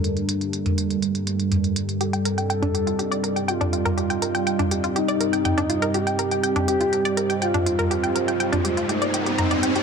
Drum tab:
HH |xxxxxxxxxxxxxxxx|xxxxxxxxxxxxxxxx|xxxxxxxxxxxxxxxx|xxxxxxxxxxxxxxxx|
T2 |-----o------o---|-----o-------o-o|-----o------o---|-----o-------o-o|

HH |xxxxxxxxxxxxxxxx|
T2 |-----o------o---|